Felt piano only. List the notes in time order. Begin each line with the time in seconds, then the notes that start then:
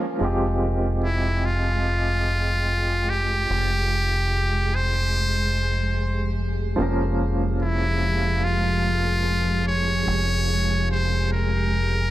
Already playing: F3 A#3 C#4 A#4
0.19 F3 G#3
0.23 C4 G4
6.76 F3 A#3
6.80 C#4 A#4